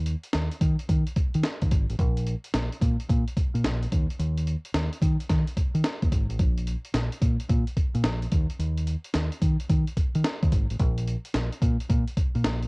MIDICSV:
0, 0, Header, 1, 4, 480
1, 0, Start_track
1, 0, Tempo, 550459
1, 1735, Time_signature, 4, 2, 24, 8
1, 11053, End_track
2, 0, Start_track
2, 0, Title_t, "Fingered electric bass"
2, 0, Program_c, 0, 33
2, 0, Note_on_c, 0, 39, 94
2, 123, Note_off_c, 0, 39, 0
2, 300, Note_on_c, 0, 39, 84
2, 419, Note_off_c, 0, 39, 0
2, 533, Note_on_c, 0, 51, 90
2, 655, Note_off_c, 0, 51, 0
2, 776, Note_on_c, 0, 51, 97
2, 897, Note_off_c, 0, 51, 0
2, 1175, Note_on_c, 0, 51, 87
2, 1239, Note_off_c, 0, 51, 0
2, 1412, Note_on_c, 0, 39, 85
2, 1476, Note_off_c, 0, 39, 0
2, 1495, Note_on_c, 0, 32, 102
2, 1617, Note_off_c, 0, 32, 0
2, 1656, Note_on_c, 0, 33, 81
2, 1719, Note_off_c, 0, 33, 0
2, 1734, Note_on_c, 0, 34, 104
2, 2042, Note_off_c, 0, 34, 0
2, 2217, Note_on_c, 0, 34, 96
2, 2338, Note_off_c, 0, 34, 0
2, 2454, Note_on_c, 0, 46, 100
2, 2576, Note_off_c, 0, 46, 0
2, 2698, Note_on_c, 0, 46, 111
2, 2819, Note_off_c, 0, 46, 0
2, 3091, Note_on_c, 0, 46, 94
2, 3177, Note_on_c, 0, 34, 91
2, 3190, Note_off_c, 0, 46, 0
2, 3362, Note_off_c, 0, 34, 0
2, 3419, Note_on_c, 0, 39, 97
2, 3539, Note_off_c, 0, 39, 0
2, 3657, Note_on_c, 0, 39, 96
2, 3964, Note_off_c, 0, 39, 0
2, 4136, Note_on_c, 0, 39, 89
2, 4257, Note_off_c, 0, 39, 0
2, 4376, Note_on_c, 0, 51, 90
2, 4498, Note_off_c, 0, 51, 0
2, 4617, Note_on_c, 0, 51, 100
2, 4738, Note_off_c, 0, 51, 0
2, 5010, Note_on_c, 0, 51, 88
2, 5075, Note_off_c, 0, 51, 0
2, 5254, Note_on_c, 0, 39, 84
2, 5318, Note_off_c, 0, 39, 0
2, 5339, Note_on_c, 0, 32, 99
2, 5459, Note_off_c, 0, 32, 0
2, 5487, Note_on_c, 0, 33, 85
2, 5554, Note_off_c, 0, 33, 0
2, 5575, Note_on_c, 0, 34, 96
2, 5883, Note_off_c, 0, 34, 0
2, 6052, Note_on_c, 0, 34, 90
2, 6175, Note_off_c, 0, 34, 0
2, 6293, Note_on_c, 0, 46, 94
2, 6415, Note_off_c, 0, 46, 0
2, 6536, Note_on_c, 0, 46, 102
2, 6657, Note_off_c, 0, 46, 0
2, 6931, Note_on_c, 0, 46, 91
2, 7014, Note_on_c, 0, 34, 91
2, 7027, Note_off_c, 0, 46, 0
2, 7201, Note_off_c, 0, 34, 0
2, 7257, Note_on_c, 0, 39, 101
2, 7378, Note_off_c, 0, 39, 0
2, 7492, Note_on_c, 0, 39, 87
2, 7801, Note_off_c, 0, 39, 0
2, 7975, Note_on_c, 0, 39, 85
2, 8096, Note_off_c, 0, 39, 0
2, 8212, Note_on_c, 0, 51, 84
2, 8335, Note_off_c, 0, 51, 0
2, 8456, Note_on_c, 0, 51, 104
2, 8577, Note_off_c, 0, 51, 0
2, 8853, Note_on_c, 0, 51, 91
2, 8917, Note_off_c, 0, 51, 0
2, 9094, Note_on_c, 0, 39, 92
2, 9158, Note_off_c, 0, 39, 0
2, 9177, Note_on_c, 0, 32, 103
2, 9298, Note_off_c, 0, 32, 0
2, 9336, Note_on_c, 0, 33, 85
2, 9399, Note_off_c, 0, 33, 0
2, 9413, Note_on_c, 0, 34, 108
2, 9722, Note_off_c, 0, 34, 0
2, 9895, Note_on_c, 0, 34, 89
2, 10016, Note_off_c, 0, 34, 0
2, 10132, Note_on_c, 0, 46, 102
2, 10255, Note_off_c, 0, 46, 0
2, 10374, Note_on_c, 0, 46, 96
2, 10496, Note_off_c, 0, 46, 0
2, 10773, Note_on_c, 0, 46, 93
2, 10857, Note_on_c, 0, 34, 93
2, 10870, Note_off_c, 0, 46, 0
2, 11042, Note_off_c, 0, 34, 0
2, 11053, End_track
3, 0, Start_track
3, 0, Title_t, "Muted fingered electric bass strokes"
3, 1016, Note_on_c, 9, 29, 50
3, 1103, Note_off_c, 9, 29, 0
3, 2938, Note_on_c, 9, 29, 47
3, 3025, Note_off_c, 9, 29, 0
3, 4855, Note_on_c, 9, 29, 50
3, 4942, Note_off_c, 9, 29, 0
3, 6774, Note_on_c, 9, 29, 49
3, 6862, Note_off_c, 9, 29, 0
3, 8693, Note_on_c, 9, 29, 46
3, 8781, Note_off_c, 9, 29, 0
3, 10615, Note_on_c, 9, 29, 49
3, 10702, Note_off_c, 9, 29, 0
3, 11053, End_track
4, 0, Start_track
4, 0, Title_t, "Drums"
4, 52, Note_on_c, 9, 42, 71
4, 139, Note_off_c, 9, 42, 0
4, 205, Note_on_c, 9, 42, 55
4, 288, Note_on_c, 9, 38, 96
4, 290, Note_off_c, 9, 42, 0
4, 290, Note_on_c, 9, 42, 81
4, 375, Note_off_c, 9, 38, 0
4, 377, Note_off_c, 9, 42, 0
4, 449, Note_on_c, 9, 42, 51
4, 532, Note_off_c, 9, 42, 0
4, 532, Note_on_c, 9, 36, 86
4, 532, Note_on_c, 9, 42, 79
4, 619, Note_off_c, 9, 36, 0
4, 619, Note_off_c, 9, 42, 0
4, 690, Note_on_c, 9, 42, 51
4, 776, Note_off_c, 9, 42, 0
4, 776, Note_on_c, 9, 36, 90
4, 776, Note_on_c, 9, 42, 72
4, 863, Note_off_c, 9, 36, 0
4, 864, Note_off_c, 9, 42, 0
4, 930, Note_on_c, 9, 42, 50
4, 1012, Note_off_c, 9, 42, 0
4, 1012, Note_on_c, 9, 42, 69
4, 1014, Note_on_c, 9, 36, 88
4, 1099, Note_off_c, 9, 42, 0
4, 1101, Note_off_c, 9, 36, 0
4, 1171, Note_on_c, 9, 42, 50
4, 1251, Note_on_c, 9, 38, 126
4, 1252, Note_off_c, 9, 42, 0
4, 1252, Note_on_c, 9, 42, 66
4, 1338, Note_off_c, 9, 38, 0
4, 1339, Note_off_c, 9, 42, 0
4, 1410, Note_on_c, 9, 42, 50
4, 1413, Note_on_c, 9, 36, 94
4, 1494, Note_off_c, 9, 42, 0
4, 1494, Note_on_c, 9, 42, 77
4, 1497, Note_off_c, 9, 36, 0
4, 1497, Note_on_c, 9, 36, 99
4, 1581, Note_off_c, 9, 42, 0
4, 1584, Note_off_c, 9, 36, 0
4, 1655, Note_on_c, 9, 42, 49
4, 1735, Note_on_c, 9, 36, 101
4, 1736, Note_off_c, 9, 42, 0
4, 1736, Note_on_c, 9, 42, 63
4, 1823, Note_off_c, 9, 36, 0
4, 1823, Note_off_c, 9, 42, 0
4, 1893, Note_on_c, 9, 42, 55
4, 1977, Note_off_c, 9, 42, 0
4, 1977, Note_on_c, 9, 42, 73
4, 2064, Note_off_c, 9, 42, 0
4, 2130, Note_on_c, 9, 42, 55
4, 2214, Note_on_c, 9, 38, 103
4, 2215, Note_off_c, 9, 42, 0
4, 2215, Note_on_c, 9, 42, 79
4, 2301, Note_off_c, 9, 38, 0
4, 2303, Note_off_c, 9, 42, 0
4, 2376, Note_on_c, 9, 42, 53
4, 2455, Note_on_c, 9, 36, 99
4, 2458, Note_off_c, 9, 42, 0
4, 2458, Note_on_c, 9, 42, 81
4, 2542, Note_off_c, 9, 36, 0
4, 2545, Note_off_c, 9, 42, 0
4, 2615, Note_on_c, 9, 42, 52
4, 2698, Note_on_c, 9, 36, 97
4, 2702, Note_off_c, 9, 42, 0
4, 2702, Note_on_c, 9, 42, 69
4, 2785, Note_off_c, 9, 36, 0
4, 2789, Note_off_c, 9, 42, 0
4, 2857, Note_on_c, 9, 42, 49
4, 2936, Note_on_c, 9, 36, 88
4, 2938, Note_off_c, 9, 42, 0
4, 2938, Note_on_c, 9, 42, 66
4, 3023, Note_off_c, 9, 36, 0
4, 3025, Note_off_c, 9, 42, 0
4, 3096, Note_on_c, 9, 42, 51
4, 3177, Note_on_c, 9, 38, 122
4, 3178, Note_off_c, 9, 42, 0
4, 3178, Note_on_c, 9, 42, 67
4, 3265, Note_off_c, 9, 38, 0
4, 3266, Note_off_c, 9, 42, 0
4, 3337, Note_on_c, 9, 42, 47
4, 3418, Note_off_c, 9, 42, 0
4, 3418, Note_on_c, 9, 42, 73
4, 3419, Note_on_c, 9, 36, 92
4, 3506, Note_off_c, 9, 36, 0
4, 3506, Note_off_c, 9, 42, 0
4, 3578, Note_on_c, 9, 42, 51
4, 3659, Note_off_c, 9, 42, 0
4, 3659, Note_on_c, 9, 42, 69
4, 3746, Note_off_c, 9, 42, 0
4, 3815, Note_on_c, 9, 42, 57
4, 3899, Note_off_c, 9, 42, 0
4, 3899, Note_on_c, 9, 42, 66
4, 3986, Note_off_c, 9, 42, 0
4, 4054, Note_on_c, 9, 42, 49
4, 4136, Note_on_c, 9, 38, 105
4, 4137, Note_off_c, 9, 42, 0
4, 4137, Note_on_c, 9, 42, 82
4, 4223, Note_off_c, 9, 38, 0
4, 4224, Note_off_c, 9, 42, 0
4, 4297, Note_on_c, 9, 42, 55
4, 4375, Note_on_c, 9, 36, 92
4, 4380, Note_off_c, 9, 42, 0
4, 4380, Note_on_c, 9, 42, 88
4, 4462, Note_off_c, 9, 36, 0
4, 4467, Note_off_c, 9, 42, 0
4, 4536, Note_on_c, 9, 42, 52
4, 4616, Note_on_c, 9, 38, 60
4, 4617, Note_on_c, 9, 36, 92
4, 4618, Note_off_c, 9, 42, 0
4, 4618, Note_on_c, 9, 42, 75
4, 4703, Note_off_c, 9, 38, 0
4, 4704, Note_off_c, 9, 36, 0
4, 4706, Note_off_c, 9, 42, 0
4, 4773, Note_on_c, 9, 42, 51
4, 4856, Note_on_c, 9, 36, 88
4, 4857, Note_off_c, 9, 42, 0
4, 4857, Note_on_c, 9, 42, 70
4, 4943, Note_off_c, 9, 36, 0
4, 4944, Note_off_c, 9, 42, 0
4, 5013, Note_on_c, 9, 42, 52
4, 5093, Note_on_c, 9, 38, 123
4, 5094, Note_off_c, 9, 42, 0
4, 5094, Note_on_c, 9, 42, 63
4, 5180, Note_off_c, 9, 38, 0
4, 5182, Note_off_c, 9, 42, 0
4, 5252, Note_on_c, 9, 42, 47
4, 5254, Note_on_c, 9, 36, 95
4, 5337, Note_off_c, 9, 36, 0
4, 5337, Note_on_c, 9, 36, 92
4, 5338, Note_off_c, 9, 42, 0
4, 5338, Note_on_c, 9, 42, 81
4, 5424, Note_off_c, 9, 36, 0
4, 5425, Note_off_c, 9, 42, 0
4, 5493, Note_on_c, 9, 42, 52
4, 5574, Note_off_c, 9, 42, 0
4, 5574, Note_on_c, 9, 42, 65
4, 5575, Note_on_c, 9, 36, 109
4, 5662, Note_off_c, 9, 36, 0
4, 5662, Note_off_c, 9, 42, 0
4, 5734, Note_on_c, 9, 42, 55
4, 5816, Note_off_c, 9, 42, 0
4, 5816, Note_on_c, 9, 42, 70
4, 5904, Note_off_c, 9, 42, 0
4, 5970, Note_on_c, 9, 42, 54
4, 6052, Note_on_c, 9, 38, 103
4, 6053, Note_off_c, 9, 42, 0
4, 6053, Note_on_c, 9, 42, 78
4, 6139, Note_off_c, 9, 38, 0
4, 6140, Note_off_c, 9, 42, 0
4, 6211, Note_on_c, 9, 42, 55
4, 6292, Note_on_c, 9, 36, 96
4, 6294, Note_off_c, 9, 42, 0
4, 6294, Note_on_c, 9, 42, 88
4, 6379, Note_off_c, 9, 36, 0
4, 6381, Note_off_c, 9, 42, 0
4, 6451, Note_on_c, 9, 42, 52
4, 6535, Note_off_c, 9, 42, 0
4, 6535, Note_on_c, 9, 36, 91
4, 6535, Note_on_c, 9, 42, 73
4, 6622, Note_off_c, 9, 36, 0
4, 6622, Note_off_c, 9, 42, 0
4, 6690, Note_on_c, 9, 42, 47
4, 6773, Note_on_c, 9, 36, 81
4, 6774, Note_off_c, 9, 42, 0
4, 6774, Note_on_c, 9, 42, 65
4, 6860, Note_off_c, 9, 36, 0
4, 6861, Note_off_c, 9, 42, 0
4, 6931, Note_on_c, 9, 42, 50
4, 7010, Note_on_c, 9, 38, 115
4, 7011, Note_off_c, 9, 42, 0
4, 7011, Note_on_c, 9, 42, 69
4, 7097, Note_off_c, 9, 38, 0
4, 7098, Note_off_c, 9, 42, 0
4, 7171, Note_on_c, 9, 42, 52
4, 7253, Note_off_c, 9, 42, 0
4, 7253, Note_on_c, 9, 42, 80
4, 7255, Note_on_c, 9, 36, 95
4, 7340, Note_off_c, 9, 42, 0
4, 7343, Note_off_c, 9, 36, 0
4, 7410, Note_on_c, 9, 42, 52
4, 7496, Note_off_c, 9, 42, 0
4, 7496, Note_on_c, 9, 42, 70
4, 7584, Note_off_c, 9, 42, 0
4, 7651, Note_on_c, 9, 42, 54
4, 7734, Note_off_c, 9, 42, 0
4, 7734, Note_on_c, 9, 42, 69
4, 7821, Note_off_c, 9, 42, 0
4, 7886, Note_on_c, 9, 42, 53
4, 7968, Note_on_c, 9, 38, 108
4, 7969, Note_off_c, 9, 42, 0
4, 7969, Note_on_c, 9, 42, 81
4, 8055, Note_off_c, 9, 38, 0
4, 8057, Note_off_c, 9, 42, 0
4, 8127, Note_on_c, 9, 42, 55
4, 8211, Note_on_c, 9, 36, 90
4, 8213, Note_off_c, 9, 42, 0
4, 8213, Note_on_c, 9, 42, 82
4, 8298, Note_off_c, 9, 36, 0
4, 8300, Note_off_c, 9, 42, 0
4, 8370, Note_on_c, 9, 42, 51
4, 8454, Note_off_c, 9, 42, 0
4, 8454, Note_on_c, 9, 36, 93
4, 8454, Note_on_c, 9, 42, 71
4, 8541, Note_off_c, 9, 36, 0
4, 8541, Note_off_c, 9, 42, 0
4, 8610, Note_on_c, 9, 42, 48
4, 8693, Note_off_c, 9, 42, 0
4, 8693, Note_on_c, 9, 36, 84
4, 8693, Note_on_c, 9, 42, 73
4, 8780, Note_off_c, 9, 36, 0
4, 8780, Note_off_c, 9, 42, 0
4, 8850, Note_on_c, 9, 42, 52
4, 8933, Note_on_c, 9, 38, 127
4, 8934, Note_off_c, 9, 42, 0
4, 8934, Note_on_c, 9, 42, 70
4, 9020, Note_off_c, 9, 38, 0
4, 9021, Note_off_c, 9, 42, 0
4, 9092, Note_on_c, 9, 36, 94
4, 9092, Note_on_c, 9, 42, 48
4, 9174, Note_off_c, 9, 42, 0
4, 9174, Note_on_c, 9, 42, 81
4, 9175, Note_off_c, 9, 36, 0
4, 9175, Note_on_c, 9, 36, 92
4, 9261, Note_off_c, 9, 42, 0
4, 9262, Note_off_c, 9, 36, 0
4, 9332, Note_on_c, 9, 42, 50
4, 9413, Note_off_c, 9, 42, 0
4, 9413, Note_on_c, 9, 42, 66
4, 9414, Note_on_c, 9, 36, 102
4, 9500, Note_off_c, 9, 42, 0
4, 9501, Note_off_c, 9, 36, 0
4, 9572, Note_on_c, 9, 42, 59
4, 9657, Note_off_c, 9, 42, 0
4, 9657, Note_on_c, 9, 42, 70
4, 9744, Note_off_c, 9, 42, 0
4, 9809, Note_on_c, 9, 42, 57
4, 9890, Note_on_c, 9, 38, 101
4, 9891, Note_off_c, 9, 42, 0
4, 9891, Note_on_c, 9, 42, 76
4, 9977, Note_off_c, 9, 38, 0
4, 9979, Note_off_c, 9, 42, 0
4, 10050, Note_on_c, 9, 42, 52
4, 10131, Note_on_c, 9, 36, 93
4, 10135, Note_off_c, 9, 42, 0
4, 10135, Note_on_c, 9, 42, 82
4, 10219, Note_off_c, 9, 36, 0
4, 10223, Note_off_c, 9, 42, 0
4, 10293, Note_on_c, 9, 42, 51
4, 10374, Note_on_c, 9, 36, 95
4, 10376, Note_off_c, 9, 42, 0
4, 10376, Note_on_c, 9, 42, 79
4, 10461, Note_off_c, 9, 36, 0
4, 10463, Note_off_c, 9, 42, 0
4, 10531, Note_on_c, 9, 42, 47
4, 10613, Note_on_c, 9, 36, 86
4, 10614, Note_off_c, 9, 42, 0
4, 10614, Note_on_c, 9, 42, 73
4, 10700, Note_off_c, 9, 36, 0
4, 10701, Note_off_c, 9, 42, 0
4, 10771, Note_on_c, 9, 42, 46
4, 10852, Note_on_c, 9, 38, 121
4, 10853, Note_off_c, 9, 42, 0
4, 10853, Note_on_c, 9, 42, 65
4, 10939, Note_off_c, 9, 38, 0
4, 10940, Note_off_c, 9, 42, 0
4, 11010, Note_on_c, 9, 42, 45
4, 11053, Note_off_c, 9, 42, 0
4, 11053, End_track
0, 0, End_of_file